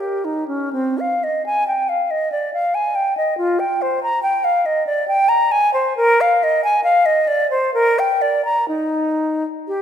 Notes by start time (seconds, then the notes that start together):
0.00 G4
0.25 D#4
0.48 C#4
0.73 C4
0.99 F5
1.24 D#5
1.46 G#5
1.67 G5
1.89 F5
2.11 D#5
2.32 D5
2.54 F5
2.75 G#5
2.95 G5
3.17 D#5
3.38 F4
3.60 G5
3.82 C5
4.03 A#5
4.23 G5
4.44 F5
4.66 D#5
4.87 D5
5.08 G5
5.29 A#5
5.52 G#5
5.74 C5
5.97 A#4
6.21 F5
6.43 D#5
6.64 G#5
6.84 F5
7.06 D#5
7.28 D5
7.51 C5
7.74 A#4
7.99 G5
8.22 D5
8.45 A#5
8.68 D#4
9.68 G4